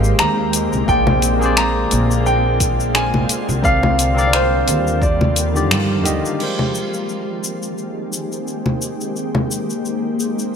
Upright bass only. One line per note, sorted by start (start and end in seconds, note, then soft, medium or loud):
0.00 0.12 G#1 loud
0.19 0.65 D#2 medium
0.73 0.85 C2 medium
0.88 1.86 A#1 loud
1.92 3.24 A#1 loud
3.49 4.62 C2 loud
4.68 5.71 D#2 loud
5.71 6.05 G2 medium
6.05 6.20 D#2 medium